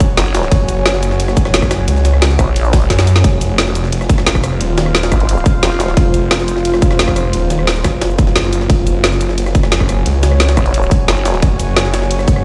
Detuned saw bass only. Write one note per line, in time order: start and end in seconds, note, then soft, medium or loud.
0.52 1.87 F#1 loud
1.88 2.38 C#2 loud
2.90 3.23 F#2 loud
3.24 4.59 F1 loud
4.61 5.10 D#1 loud
5.97 7.32 F1 loud
7.33 7.83 D#1 loud
7.84 8.68 F#1 medium
8.70 10.05 F#1 loud
10.06 10.56 C#2 loud
11.42 12.45 F#1 loud